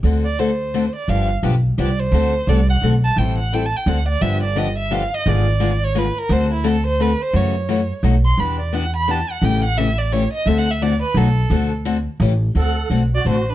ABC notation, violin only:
X:1
M:3/4
L:1/8
Q:"Swing" 1/4=173
K:Dmix
V:1 name="Violin"
z d c3 d | =f z3 d c- | c2 d f z a | g f (3g a g f d |
e d _e =e =f _e | d3 ^c B _B | c E A c B c | ^c4 z =c' |
b d f b a f | g f e d ^c _e | (3e f e d B A2- | A z4 z |
f2 z d c B |]